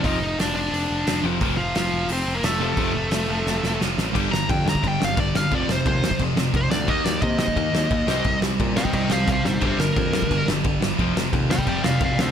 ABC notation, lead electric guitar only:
X:1
M:4/4
L:1/16
Q:1/4=175
K:Fmix
V:1 name="Lead electric guitar"
[Ee]4 [Dd]2 [Dd]8 z2 | z2 [F,F]2 [F,F]4 [Cc]3 [B,B] [A,A]2 [A,A]2- | [A,A]12 z4 | z2 b2 g2 b2 g2 f2 d2 f2 |
d2 c2 c4 z4 c2 d2 | e2 d2 e2 e8- e2- | e2 z4 [eg]2 [eg]2 [cf]2 [cf]2 [Ec]2 | [Gc]2 B8 z6 |
z6 [dg]2 [dg]2 [df]2 [df]2 [Ac]2 |]